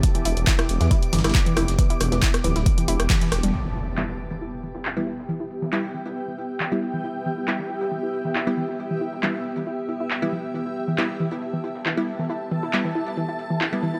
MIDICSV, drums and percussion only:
0, 0, Header, 1, 2, 480
1, 0, Start_track
1, 0, Key_signature, 1, "minor"
1, 0, Tempo, 437956
1, 36, Time_signature, 4, 2, 24, 8
1, 15341, End_track
2, 0, Start_track
2, 0, Title_t, "Drums"
2, 36, Note_on_c, 9, 42, 85
2, 37, Note_off_c, 9, 42, 0
2, 37, Note_on_c, 9, 42, 86
2, 38, Note_on_c, 9, 36, 110
2, 146, Note_off_c, 9, 42, 0
2, 147, Note_off_c, 9, 36, 0
2, 164, Note_on_c, 9, 42, 49
2, 274, Note_off_c, 9, 42, 0
2, 277, Note_on_c, 9, 42, 68
2, 277, Note_on_c, 9, 46, 93
2, 386, Note_off_c, 9, 42, 0
2, 387, Note_off_c, 9, 46, 0
2, 405, Note_on_c, 9, 42, 51
2, 514, Note_off_c, 9, 42, 0
2, 516, Note_on_c, 9, 38, 115
2, 516, Note_on_c, 9, 42, 89
2, 517, Note_on_c, 9, 36, 117
2, 518, Note_off_c, 9, 42, 0
2, 518, Note_on_c, 9, 39, 127
2, 518, Note_on_c, 9, 42, 95
2, 626, Note_off_c, 9, 38, 0
2, 627, Note_off_c, 9, 36, 0
2, 627, Note_off_c, 9, 39, 0
2, 627, Note_off_c, 9, 42, 0
2, 643, Note_on_c, 9, 38, 51
2, 644, Note_on_c, 9, 37, 97
2, 644, Note_on_c, 9, 42, 54
2, 752, Note_off_c, 9, 38, 0
2, 754, Note_off_c, 9, 37, 0
2, 754, Note_off_c, 9, 42, 0
2, 756, Note_on_c, 9, 42, 72
2, 758, Note_on_c, 9, 46, 88
2, 866, Note_off_c, 9, 42, 0
2, 867, Note_off_c, 9, 46, 0
2, 883, Note_on_c, 9, 38, 50
2, 884, Note_on_c, 9, 42, 47
2, 993, Note_off_c, 9, 38, 0
2, 994, Note_off_c, 9, 42, 0
2, 996, Note_on_c, 9, 42, 85
2, 997, Note_off_c, 9, 42, 0
2, 997, Note_on_c, 9, 36, 115
2, 997, Note_on_c, 9, 42, 86
2, 1107, Note_off_c, 9, 36, 0
2, 1107, Note_off_c, 9, 42, 0
2, 1124, Note_on_c, 9, 42, 55
2, 1233, Note_off_c, 9, 42, 0
2, 1236, Note_on_c, 9, 46, 96
2, 1237, Note_on_c, 9, 38, 82
2, 1237, Note_on_c, 9, 42, 64
2, 1299, Note_off_c, 9, 38, 0
2, 1299, Note_off_c, 9, 42, 0
2, 1299, Note_on_c, 9, 38, 87
2, 1299, Note_on_c, 9, 42, 65
2, 1346, Note_off_c, 9, 46, 0
2, 1363, Note_off_c, 9, 38, 0
2, 1363, Note_off_c, 9, 42, 0
2, 1363, Note_on_c, 9, 37, 92
2, 1363, Note_on_c, 9, 38, 94
2, 1363, Note_on_c, 9, 42, 48
2, 1419, Note_off_c, 9, 38, 0
2, 1419, Note_off_c, 9, 42, 0
2, 1419, Note_on_c, 9, 38, 94
2, 1419, Note_on_c, 9, 42, 69
2, 1473, Note_off_c, 9, 37, 0
2, 1476, Note_off_c, 9, 38, 0
2, 1476, Note_off_c, 9, 42, 0
2, 1476, Note_on_c, 9, 38, 114
2, 1476, Note_on_c, 9, 42, 88
2, 1477, Note_off_c, 9, 42, 0
2, 1477, Note_on_c, 9, 36, 115
2, 1477, Note_on_c, 9, 39, 112
2, 1477, Note_on_c, 9, 42, 86
2, 1586, Note_off_c, 9, 38, 0
2, 1587, Note_off_c, 9, 36, 0
2, 1587, Note_off_c, 9, 39, 0
2, 1587, Note_off_c, 9, 42, 0
2, 1605, Note_on_c, 9, 42, 48
2, 1714, Note_off_c, 9, 42, 0
2, 1716, Note_on_c, 9, 42, 70
2, 1718, Note_on_c, 9, 37, 98
2, 1718, Note_on_c, 9, 46, 87
2, 1826, Note_off_c, 9, 42, 0
2, 1827, Note_off_c, 9, 37, 0
2, 1827, Note_off_c, 9, 46, 0
2, 1843, Note_on_c, 9, 38, 42
2, 1845, Note_on_c, 9, 42, 49
2, 1953, Note_off_c, 9, 38, 0
2, 1954, Note_off_c, 9, 42, 0
2, 1956, Note_on_c, 9, 42, 88
2, 1957, Note_on_c, 9, 36, 118
2, 1958, Note_off_c, 9, 42, 0
2, 1958, Note_on_c, 9, 42, 93
2, 2067, Note_off_c, 9, 36, 0
2, 2068, Note_off_c, 9, 42, 0
2, 2085, Note_on_c, 9, 42, 51
2, 2195, Note_off_c, 9, 42, 0
2, 2196, Note_on_c, 9, 42, 70
2, 2199, Note_on_c, 9, 37, 80
2, 2199, Note_on_c, 9, 46, 103
2, 2306, Note_off_c, 9, 42, 0
2, 2309, Note_off_c, 9, 37, 0
2, 2309, Note_off_c, 9, 46, 0
2, 2323, Note_on_c, 9, 38, 49
2, 2326, Note_on_c, 9, 42, 50
2, 2432, Note_off_c, 9, 38, 0
2, 2435, Note_off_c, 9, 42, 0
2, 2436, Note_on_c, 9, 38, 118
2, 2436, Note_on_c, 9, 42, 89
2, 2437, Note_on_c, 9, 36, 113
2, 2439, Note_off_c, 9, 42, 0
2, 2439, Note_on_c, 9, 39, 124
2, 2439, Note_on_c, 9, 42, 91
2, 2545, Note_off_c, 9, 38, 0
2, 2547, Note_off_c, 9, 36, 0
2, 2549, Note_off_c, 9, 39, 0
2, 2549, Note_off_c, 9, 42, 0
2, 2562, Note_on_c, 9, 38, 39
2, 2565, Note_on_c, 9, 37, 94
2, 2565, Note_on_c, 9, 42, 56
2, 2672, Note_off_c, 9, 38, 0
2, 2675, Note_off_c, 9, 37, 0
2, 2675, Note_off_c, 9, 42, 0
2, 2676, Note_on_c, 9, 42, 68
2, 2678, Note_on_c, 9, 46, 89
2, 2785, Note_off_c, 9, 42, 0
2, 2788, Note_off_c, 9, 46, 0
2, 2803, Note_on_c, 9, 38, 52
2, 2804, Note_on_c, 9, 42, 49
2, 2912, Note_off_c, 9, 38, 0
2, 2913, Note_off_c, 9, 42, 0
2, 2916, Note_on_c, 9, 42, 94
2, 2917, Note_on_c, 9, 36, 121
2, 2918, Note_off_c, 9, 42, 0
2, 2918, Note_on_c, 9, 42, 91
2, 3027, Note_off_c, 9, 36, 0
2, 3027, Note_off_c, 9, 42, 0
2, 3045, Note_on_c, 9, 42, 56
2, 3154, Note_off_c, 9, 42, 0
2, 3156, Note_on_c, 9, 42, 64
2, 3158, Note_on_c, 9, 46, 101
2, 3266, Note_off_c, 9, 42, 0
2, 3268, Note_off_c, 9, 46, 0
2, 3284, Note_on_c, 9, 37, 91
2, 3284, Note_on_c, 9, 42, 55
2, 3394, Note_off_c, 9, 37, 0
2, 3394, Note_off_c, 9, 42, 0
2, 3396, Note_on_c, 9, 38, 112
2, 3396, Note_on_c, 9, 42, 89
2, 3397, Note_off_c, 9, 42, 0
2, 3397, Note_on_c, 9, 36, 113
2, 3397, Note_on_c, 9, 39, 120
2, 3397, Note_on_c, 9, 42, 96
2, 3506, Note_off_c, 9, 36, 0
2, 3506, Note_off_c, 9, 38, 0
2, 3506, Note_off_c, 9, 39, 0
2, 3506, Note_off_c, 9, 42, 0
2, 3523, Note_on_c, 9, 42, 54
2, 3633, Note_off_c, 9, 42, 0
2, 3637, Note_on_c, 9, 42, 72
2, 3638, Note_on_c, 9, 37, 90
2, 3638, Note_on_c, 9, 46, 87
2, 3746, Note_off_c, 9, 42, 0
2, 3747, Note_off_c, 9, 37, 0
2, 3747, Note_off_c, 9, 46, 0
2, 3763, Note_on_c, 9, 42, 53
2, 3873, Note_off_c, 9, 42, 0
2, 3876, Note_on_c, 9, 42, 81
2, 3985, Note_off_c, 9, 42, 0
2, 4357, Note_on_c, 9, 39, 117
2, 4466, Note_off_c, 9, 39, 0
2, 4483, Note_on_c, 9, 38, 49
2, 4592, Note_off_c, 9, 38, 0
2, 4596, Note_on_c, 9, 42, 71
2, 4705, Note_off_c, 9, 42, 0
2, 4722, Note_on_c, 9, 38, 47
2, 4832, Note_off_c, 9, 38, 0
2, 4836, Note_on_c, 9, 42, 85
2, 4946, Note_off_c, 9, 42, 0
2, 5076, Note_on_c, 9, 42, 62
2, 5186, Note_off_c, 9, 42, 0
2, 5203, Note_on_c, 9, 38, 45
2, 5313, Note_off_c, 9, 38, 0
2, 5316, Note_on_c, 9, 42, 81
2, 5317, Note_on_c, 9, 39, 114
2, 5426, Note_off_c, 9, 42, 0
2, 5427, Note_off_c, 9, 39, 0
2, 5556, Note_on_c, 9, 42, 69
2, 5666, Note_off_c, 9, 42, 0
2, 5683, Note_on_c, 9, 38, 41
2, 5793, Note_off_c, 9, 38, 0
2, 5796, Note_on_c, 9, 42, 83
2, 5906, Note_off_c, 9, 42, 0
2, 6037, Note_on_c, 9, 42, 69
2, 6146, Note_off_c, 9, 42, 0
2, 6163, Note_on_c, 9, 38, 48
2, 6273, Note_off_c, 9, 38, 0
2, 6277, Note_on_c, 9, 39, 121
2, 6386, Note_off_c, 9, 39, 0
2, 6403, Note_on_c, 9, 38, 39
2, 6513, Note_off_c, 9, 38, 0
2, 6516, Note_on_c, 9, 42, 67
2, 6626, Note_off_c, 9, 42, 0
2, 6643, Note_on_c, 9, 38, 48
2, 6752, Note_off_c, 9, 38, 0
2, 6756, Note_on_c, 9, 42, 87
2, 6866, Note_off_c, 9, 42, 0
2, 6997, Note_on_c, 9, 42, 62
2, 7106, Note_off_c, 9, 42, 0
2, 7235, Note_on_c, 9, 42, 79
2, 7236, Note_on_c, 9, 39, 109
2, 7345, Note_off_c, 9, 42, 0
2, 7346, Note_off_c, 9, 39, 0
2, 7475, Note_on_c, 9, 42, 69
2, 7585, Note_off_c, 9, 42, 0
2, 7715, Note_on_c, 9, 42, 82
2, 7825, Note_off_c, 9, 42, 0
2, 7956, Note_on_c, 9, 42, 64
2, 8065, Note_off_c, 9, 42, 0
2, 8196, Note_on_c, 9, 39, 107
2, 8306, Note_off_c, 9, 39, 0
2, 8322, Note_on_c, 9, 38, 49
2, 8432, Note_off_c, 9, 38, 0
2, 8435, Note_on_c, 9, 42, 66
2, 8545, Note_off_c, 9, 42, 0
2, 8562, Note_on_c, 9, 38, 50
2, 8671, Note_off_c, 9, 38, 0
2, 8675, Note_on_c, 9, 42, 87
2, 8784, Note_off_c, 9, 42, 0
2, 8915, Note_on_c, 9, 42, 63
2, 9025, Note_off_c, 9, 42, 0
2, 9042, Note_on_c, 9, 38, 47
2, 9152, Note_off_c, 9, 38, 0
2, 9157, Note_on_c, 9, 39, 107
2, 9266, Note_off_c, 9, 39, 0
2, 9396, Note_on_c, 9, 42, 65
2, 9505, Note_off_c, 9, 42, 0
2, 9523, Note_on_c, 9, 38, 40
2, 9632, Note_off_c, 9, 38, 0
2, 9636, Note_on_c, 9, 42, 86
2, 9746, Note_off_c, 9, 42, 0
2, 9876, Note_on_c, 9, 42, 62
2, 9985, Note_off_c, 9, 42, 0
2, 10003, Note_on_c, 9, 38, 46
2, 10112, Note_off_c, 9, 38, 0
2, 10117, Note_on_c, 9, 39, 111
2, 10227, Note_off_c, 9, 39, 0
2, 10243, Note_on_c, 9, 38, 41
2, 10352, Note_off_c, 9, 38, 0
2, 10356, Note_on_c, 9, 42, 71
2, 10466, Note_off_c, 9, 42, 0
2, 10482, Note_on_c, 9, 38, 48
2, 10592, Note_off_c, 9, 38, 0
2, 10595, Note_on_c, 9, 42, 81
2, 10705, Note_off_c, 9, 42, 0
2, 10835, Note_on_c, 9, 42, 61
2, 10945, Note_off_c, 9, 42, 0
2, 11076, Note_on_c, 9, 39, 102
2, 11186, Note_off_c, 9, 39, 0
2, 11316, Note_on_c, 9, 42, 70
2, 11426, Note_off_c, 9, 42, 0
2, 11556, Note_on_c, 9, 42, 85
2, 11665, Note_off_c, 9, 42, 0
2, 11795, Note_on_c, 9, 42, 65
2, 11905, Note_off_c, 9, 42, 0
2, 12037, Note_on_c, 9, 39, 115
2, 12147, Note_off_c, 9, 39, 0
2, 12162, Note_on_c, 9, 38, 46
2, 12272, Note_off_c, 9, 38, 0
2, 12276, Note_on_c, 9, 42, 70
2, 12385, Note_off_c, 9, 42, 0
2, 12403, Note_on_c, 9, 38, 49
2, 12512, Note_off_c, 9, 38, 0
2, 12515, Note_on_c, 9, 42, 89
2, 12625, Note_off_c, 9, 42, 0
2, 12756, Note_on_c, 9, 42, 67
2, 12865, Note_off_c, 9, 42, 0
2, 12882, Note_on_c, 9, 38, 47
2, 12992, Note_off_c, 9, 38, 0
2, 12996, Note_on_c, 9, 39, 102
2, 13106, Note_off_c, 9, 39, 0
2, 13236, Note_on_c, 9, 42, 69
2, 13345, Note_off_c, 9, 42, 0
2, 13363, Note_on_c, 9, 38, 40
2, 13472, Note_off_c, 9, 38, 0
2, 13476, Note_on_c, 9, 42, 80
2, 13586, Note_off_c, 9, 42, 0
2, 13716, Note_on_c, 9, 42, 66
2, 13826, Note_off_c, 9, 42, 0
2, 13843, Note_on_c, 9, 38, 47
2, 13953, Note_off_c, 9, 38, 0
2, 13956, Note_on_c, 9, 39, 118
2, 14066, Note_off_c, 9, 39, 0
2, 14083, Note_on_c, 9, 38, 39
2, 14192, Note_off_c, 9, 38, 0
2, 14195, Note_on_c, 9, 42, 70
2, 14305, Note_off_c, 9, 42, 0
2, 14323, Note_on_c, 9, 38, 48
2, 14432, Note_off_c, 9, 38, 0
2, 14435, Note_on_c, 9, 42, 84
2, 14545, Note_off_c, 9, 42, 0
2, 14676, Note_on_c, 9, 42, 63
2, 14785, Note_off_c, 9, 42, 0
2, 14917, Note_on_c, 9, 39, 108
2, 15026, Note_off_c, 9, 39, 0
2, 15156, Note_on_c, 9, 42, 68
2, 15265, Note_off_c, 9, 42, 0
2, 15341, End_track
0, 0, End_of_file